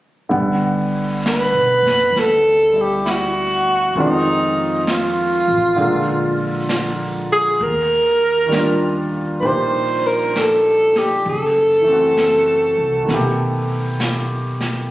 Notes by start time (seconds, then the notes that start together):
0.29 G1 D3 G3 B3 F#5, brush sweep
1.26 B4, snare, hi-hat pedal
1.52 B1
1.82 F#1
1.87 snare
2.12 D2, brush sweep, snare
2.19 A4
2.73 G3 E4
2.81 G4
3.05 E4 F#4, snare, hi-hat pedal
3.95 F2 D#3 G#3 C4 F4, brush sweep
4.00 D#4
4.84 D#4, snare, hi-hat pedal
4.91 F4
5.48 A1
5.76 A#1 D3 G#3 A#3, brush sweep
5.81 F4
6.69 snare, hi-hat pedal
7.32 G#4
7.61 D#2 A#4, brush sweep
8.46 D#3 G3
8.52 D4, snare, hi-hat pedal
8.57 F4
9.40 A#1 A#3 B4, brush sweep
9.44 D#4 G4 C5
10.07 A#4
10.36 A4, snare, hi-hat pedal
10.96 G4, snare
11.26 F#1 A4, brush sweep
11.81 E3 A3
11.88 C4
11.92 F#4
12.17 snare, hi-hat pedal
12.78 C2
13.03 D#3 A3
13.08 B1 B3, brush sweep, snare
13.14 G4
14.00 snare, hi-hat pedal
14.61 snare